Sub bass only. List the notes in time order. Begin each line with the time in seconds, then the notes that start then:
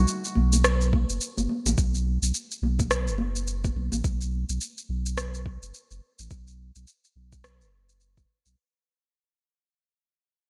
0.36 B1
1.10 F#1
1.38 F#1
1.66 A1
1.78 B1
2.22 B1
2.62 B1
3.07 F#1
3.76 B1
3.92 A1
4.04 B1
4.49 B1
4.89 B1
5.62 F#1
5.91 F#1
6.19 A1
6.31 B1
6.76 B1
7.16 B1
7.61 F#1
8.46 B1